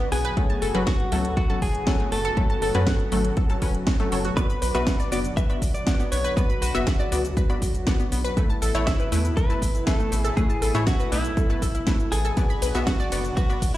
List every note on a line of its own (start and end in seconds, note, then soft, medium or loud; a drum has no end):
0.00 0.33 B2 medium
0.00 0.33 D3 medium
0.00 0.33 F#3 medium
0.00 4.33 B3 medium
0.00 8.33 F#4 medium
0.12 0.31 B1 medium
0.12 0.17 B3 medium
0.12 0.87 G#4 loud
0.12 open hi-hat loud
0.25 0.36 B4 loud
0.25 closed hi-hat medium
0.37 4.33 A2 medium
0.37 4.33 C#3 medium
0.37 8.33 F#3 medium
0.37 0.72 F#3 medium
0.37 0.49 A3 medium
0.37 0.72 A3 medium
0.37 0.72 C#4 medium
0.37 kick loud
0.37 closed hi-hat medium
0.50 0.61 A5 medium
0.50 closed hi-hat soft
0.62 0.72 F#1 loud
0.62 0.74 A4 loud
0.62 open hi-hat loud
0.75 0.94 F#1 medium
0.75 0.89 F#3 loud
0.75 0.89 C#4 medium
0.75 0.82 F#4 medium
0.75 0.89 B4 loud
0.75 closed hi-hat medium
0.87 1.36 F#4 loud
0.87 0.99 F#5 loud
0.87 kick loud
0.87 snare loud
0.87 closed hi-hat medium
1.00 closed hi-hat soft
1.12 1.31 C#2 medium
1.12 1.26 F#3 medium
1.12 1.17 A3 medium
1.12 1.26 C#4 medium
1.12 1.26 A4 medium
1.12 open hi-hat loud
1.25 closed hi-hat medium
1.37 1.60 F#4 loud
1.37 1.49 A4 medium
1.37 kick loud
1.37 closed hi-hat medium
1.50 1.72 F#3 medium
1.50 1.72 C#4 medium
1.50 1.72 A4 medium
1.50 1.61 A5 medium
1.50 closed hi-hat soft
1.62 1.81 F#1 medium
1.62 2.09 G#4 loud
1.62 kick medium
1.62 open hi-hat loud
1.75 closed hi-hat medium
1.87 2.01 F#3 medium
1.87 2.01 C#4 medium
1.87 2.01 A4 loud
1.87 1.99 F#5 loud
1.87 kick loud
1.87 snare loud
1.87 closed hi-hat medium
2.00 2.07 A3 medium
2.00 closed hi-hat soft
2.12 2.31 F#1 medium
2.12 2.17 A3 medium
2.12 3.83 A4 medium
2.12 open hi-hat loud
2.25 2.36 A4 loud
2.25 closed hi-hat medium
2.37 2.72 F#3 medium
2.37 2.49 A3 medium
2.37 2.72 C#4 medium
2.37 2.72 A4 medium
2.37 kick loud
2.37 closed hi-hat medium
2.50 2.61 A5 medium
2.50 closed hi-hat soft
2.62 2.72 F#1 medium
2.62 2.74 A4 loud
2.62 open hi-hat loud
2.75 2.94 F#2 loud
2.75 2.89 F#3 loud
2.75 2.89 C#4 medium
2.75 2.82 F#4 medium
2.75 2.89 B4 loud
2.75 closed hi-hat medium
2.87 2.99 F#5 loud
2.87 kick loud
2.87 snare loud
2.87 closed hi-hat medium
3.00 closed hi-hat soft
3.12 3.31 G#1 medium
3.12 3.26 F#3 medium
3.12 3.17 A3 medium
3.12 3.26 C#4 medium
3.12 3.26 A4 medium
3.12 open hi-hat loud
3.25 closed hi-hat medium
3.37 3.49 A4 medium
3.37 kick loud
3.37 closed hi-hat medium
3.50 3.60 F#3 medium
3.50 3.60 C#4 medium
3.50 3.60 A4 medium
3.50 3.61 A5 medium
3.50 closed hi-hat soft
3.62 3.81 E1 loud
3.62 3.76 F#3 medium
3.62 3.76 C#4 medium
3.62 3.74 C#4 loud
3.62 3.76 B4 loud
3.62 kick medium
3.62 open hi-hat loud
3.75 closed hi-hat medium
3.87 3.92 F#4 medium
3.87 kick loud
3.87 snare loud
3.87 closed hi-hat medium
4.00 4.10 F#3 medium
4.00 4.07 A3 loud
4.00 4.10 C#4 medium
4.00 4.10 A4 medium
4.00 closed hi-hat soft
4.12 4.31 F#1 medium
4.12 4.26 F#3 medium
4.12 4.26 C#4 medium
4.12 4.26 A4 medium
4.12 4.17 C#5 medium
4.12 open hi-hat loud
4.25 4.29 F#4 medium
4.25 closed hi-hat medium
4.37 13.78 B2 medium
4.37 8.33 D3 medium
4.37 4.72 B3 medium
4.37 4.49 B3 medium
4.37 6.35 D4 medium
4.37 4.72 F#4 medium
4.37 4.72 B4 loud
4.37 4.72 D5 medium
4.37 kick loud
4.37 closed hi-hat medium
4.37 shaker soft
4.50 4.61 B5 medium
4.50 closed hi-hat soft
4.50 shaker soft
4.62 4.72 B1 loud
4.62 4.74 B4 loud
4.62 open hi-hat loud
4.62 shaker medium
4.75 4.94 B1 medium
4.75 4.89 B3 loud
4.75 4.82 F#4 medium
4.75 4.89 F#4 medium
4.75 5.12 B4 loud
4.75 4.89 E5 loud
4.75 closed hi-hat medium
4.75 shaker soft
4.87 4.99 F#5 loud
4.87 kick loud
4.87 snare loud
4.87 closed hi-hat medium
4.87 shaker soft
5.00 5.11 D5 loud
5.00 closed hi-hat soft
5.00 shaker soft
5.12 5.31 F#1 medium
5.12 5.17 B3 medium
5.12 5.26 B3 medium
5.12 5.26 F#4 medium
5.12 5.19 D5 loud
5.12 5.26 D5 medium
5.12 open hi-hat loud
5.12 shaker medium
5.25 closed hi-hat medium
5.25 shaker soft
5.37 5.49 B4 medium
5.37 5.74 E5 loud
5.37 kick loud
5.37 closed hi-hat medium
5.37 shaker soft
5.50 5.72 B3 medium
5.50 5.72 F#4 medium
5.50 5.72 D5 medium
5.50 5.61 B5 medium
5.50 closed hi-hat soft
5.50 shaker soft
5.62 5.81 B1 medium
5.62 kick medium
5.62 open hi-hat loud
5.62 shaker medium
5.74 6.11 D5 loud
5.74 closed hi-hat medium
5.74 shaker soft
5.87 6.01 B3 medium
5.87 6.01 F#4 medium
5.87 6.01 D5 loud
5.87 5.99 F#5 loud
5.87 kick loud
5.87 snare loud
5.87 closed hi-hat medium
5.87 shaker soft
6.00 6.07 B3 medium
6.00 closed hi-hat soft
6.00 shaker soft
6.12 6.31 B1 medium
6.12 6.17 B3 medium
6.12 6.36 C#5 loud
6.12 open hi-hat loud
6.12 shaker medium
6.24 6.36 B4 loud
6.24 closed hi-hat medium
6.24 shaker soft
6.37 8.35 C#3 medium
6.37 6.49 B3 medium
6.37 6.72 B3 medium
6.37 6.72 F#4 medium
6.37 6.63 B4 loud
6.37 6.72 D5 medium
6.37 kick loud
6.37 closed hi-hat medium
6.37 shaker soft
6.49 6.61 B5 medium
6.49 closed hi-hat soft
6.49 shaker soft
6.62 6.72 B1 medium
6.62 8.08 F#4 medium
6.62 6.74 B4 loud
6.62 open hi-hat loud
6.62 shaker medium
6.75 6.93 F#1 loud
6.75 6.89 B3 loud
6.75 6.82 F#4 medium
6.75 6.89 F#4 medium
6.75 6.89 E5 loud
6.75 closed hi-hat medium
6.75 shaker soft
6.87 6.99 F#5 loud
6.87 kick loud
6.87 snare loud
6.87 closed hi-hat medium
6.87 shaker soft
6.99 7.11 D5 loud
6.99 closed hi-hat soft
6.99 shaker soft
7.12 7.31 C#2 medium
7.12 7.26 B3 medium
7.12 7.17 B3 medium
7.12 7.26 F#4 medium
7.12 7.26 D5 loud
7.12 open hi-hat loud
7.12 shaker medium
7.25 closed hi-hat medium
7.25 shaker soft
7.37 7.49 B4 medium
7.37 kick loud
7.37 closed hi-hat medium
7.37 shaker soft
7.50 7.72 B3 medium
7.50 7.72 F#4 medium
7.50 7.72 D5 medium
7.50 7.61 B5 medium
7.50 closed hi-hat soft
7.50 shaker soft
7.62 7.81 C#2 medium
7.62 kick medium
7.62 open hi-hat loud
7.62 shaker medium
7.75 closed hi-hat medium
7.75 shaker soft
7.87 8.01 B3 medium
7.87 8.01 F#4 medium
7.87 8.01 D5 loud
7.87 7.99 F#5 loud
7.87 kick loud
7.87 snare loud
7.87 closed hi-hat medium
7.87 shaker soft
8.00 8.07 B3 medium
8.00 closed hi-hat soft
8.00 shaker soft
8.12 8.31 B1 medium
8.12 8.17 B3 medium
8.12 open hi-hat loud
8.12 shaker medium
8.24 8.36 B4 loud
8.24 closed hi-hat medium
8.24 shaker soft
8.37 12.33 A2 medium
8.37 12.33 E3 medium
8.37 8.49 A3 medium
8.37 8.72 A3 medium
8.37 12.33 B3 medium
8.37 12.33 E4 medium
8.37 8.72 E4 medium
8.37 8.72 B4 medium
8.37 kick loud
8.37 closed hi-hat medium
8.37 shaker soft
8.50 8.61 A5 medium
8.50 closed hi-hat soft
8.50 shaker soft
8.62 8.72 A1 loud
8.62 8.74 A4 loud
8.62 open hi-hat loud
8.62 shaker medium
8.75 8.93 A1 loud
8.75 8.89 A3 loud
8.75 8.82 E4 medium
8.75 8.89 E4 medium
8.75 8.89 C#5 loud
8.75 closed hi-hat medium
8.75 shaker soft
8.87 9.33 E4 loud
8.87 8.99 E5 loud
8.87 kick loud
8.87 snare loud
8.87 closed hi-hat soft
8.87 shaker soft
9.00 9.11 B4 loud
9.00 closed hi-hat soft
9.00 shaker soft
9.12 9.31 E2 medium
9.12 9.17 A3 medium
9.12 9.26 A3 medium
9.12 9.26 E4 medium
9.12 9.26 B4 medium
9.12 open hi-hat loud
9.12 shaker medium
9.25 closed hi-hat medium
9.25 shaker soft
9.37 9.49 A4 medium
9.37 9.86 B4 loud
9.37 kick loud
9.37 closed hi-hat medium
9.37 shaker soft
9.50 9.72 A3 medium
9.50 9.72 E4 medium
9.50 9.72 B4 medium
9.50 9.61 A5 medium
9.50 closed hi-hat soft
9.50 shaker soft
9.62 9.81 A1 medium
9.62 kick medium
9.62 open hi-hat loud
9.62 shaker medium
9.75 closed hi-hat medium
9.75 shaker soft
9.87 10.01 A3 medium
9.87 10.01 E4 medium
9.87 10.22 A4 loud
9.87 10.01 B4 loud
9.87 9.99 E5 loud
9.87 kick loud
9.87 snare loud
9.87 closed hi-hat medium
9.87 shaker soft
10.00 10.07 A3 medium
10.00 closed hi-hat soft
10.00 shaker soft
10.12 10.31 A1 medium
10.12 10.17 A3 medium
10.12 open hi-hat loud
10.12 shaker medium
10.22 10.33 G#4 loud
10.22 10.36 A4 loud
10.22 closed hi-hat medium
10.22 shaker soft
10.37 10.49 A3 medium
10.37 10.72 A3 medium
10.37 10.72 E4 medium
10.37 10.83 G#4 loud
10.37 10.72 B4 medium
10.37 kick loud
10.37 closed hi-hat medium
10.37 shaker soft
10.50 10.61 A5 medium
10.50 closed hi-hat soft
10.50 shaker soft
10.62 10.72 A1 medium
10.62 10.74 A4 loud
10.62 open hi-hat loud
10.62 shaker medium
10.75 10.94 A2 loud
10.75 10.89 A3 loud
10.75 10.82 E4 medium
10.75 10.89 E4 medium
10.75 10.89 C#5 loud
10.75 closed hi-hat soft
10.75 shaker soft
10.87 11.10 F#4 loud
10.87 10.99 E5 loud
10.87 kick loud
10.87 snare loud
10.87 closed hi-hat medium
10.87 shaker soft
11.00 11.11 B4 loud
11.00 closed hi-hat soft
11.00 shaker soft
11.12 11.31 B1 medium
11.12 11.17 A3 medium
11.12 11.26 A3 medium
11.12 12.15 E4 loud
11.12 11.26 E4 medium
11.12 11.26 B4 medium
11.12 open hi-hat loud
11.12 shaker medium
11.25 closed hi-hat medium
11.25 shaker soft
11.37 11.49 A4 medium
11.37 kick loud
11.37 closed hi-hat medium
11.37 shaker soft
11.50 11.72 A3 medium
11.50 11.72 E4 medium
11.50 11.72 B4 medium
11.50 11.61 A5 medium
11.50 closed hi-hat soft
11.50 shaker soft
11.62 11.81 B1 medium
11.62 11.74 A4 medium
11.62 kick medium
11.62 open hi-hat loud
11.62 shaker medium
11.75 11.79 E4 medium
11.75 closed hi-hat medium
11.75 shaker soft
11.87 12.01 A3 medium
11.87 11.95 E4 medium
11.87 12.01 E4 medium
11.87 12.01 B4 loud
11.87 kick loud
11.87 snare loud
11.87 closed hi-hat soft
11.87 shaker soft
12.00 closed hi-hat soft
12.00 shaker soft
12.12 12.31 A1 loud
12.12 12.83 G#4 loud
12.12 12.20 A4 medium
12.12 open hi-hat loud
12.12 shaker medium
12.25 12.36 A4 medium
12.25 closed hi-hat medium
12.25 shaker soft
12.37 13.78 D3 medium
12.37 13.78 F#3 medium
12.37 12.49 B3 medium
12.37 12.72 B3 medium
12.37 13.78 D4 medium
12.37 12.72 F#4 medium
12.37 13.78 F#4 medium
12.37 12.72 D5 medium
12.37 kick loud
12.37 closed hi-hat medium
12.37 ride medium
12.37 shaker soft
12.50 12.61 B5 medium
12.50 closed hi-hat soft
12.50 shaker soft
12.62 12.72 B1 loud
12.62 12.74 B4 loud
12.62 open hi-hat loud
12.62 ride medium
12.62 shaker medium
12.75 12.94 B1 loud
12.75 12.89 B3 loud
12.75 12.82 F#4 medium
12.75 12.89 F#4 medium
12.75 12.89 E5 loud
12.75 closed hi-hat medium
12.75 shaker soft
12.87 13.36 F#4 medium
12.87 12.99 F#5 loud
12.87 kick loud
12.87 snare loud
12.87 closed hi-hat medium
12.87 ride medium
12.87 shaker soft
13.00 13.11 D5 loud
13.00 closed hi-hat soft
13.00 shaker soft
13.12 13.31 F#1 medium
13.12 13.26 B3 medium
13.12 13.17 B3 medium
13.12 13.26 F#4 medium
13.12 13.26 D5 medium
13.12 open hi-hat loud
13.12 ride medium
13.12 shaker medium
13.25 closed hi-hat medium
13.25 shaker soft
13.37 13.74 F#4 loud
13.37 13.49 B4 medium
13.37 kick loud
13.37 closed hi-hat medium
13.37 ride medium
13.37 shaker soft
13.50 13.72 B3 medium
13.50 13.72 F#4 medium
13.50 13.72 D5 medium
13.50 13.61 B5 medium
13.50 closed hi-hat soft
13.50 shaker soft
13.62 13.78 B1 medium
13.62 kick medium
13.62 open hi-hat loud
13.62 ride medium
13.62 shaker medium
13.74 13.78 E4 medium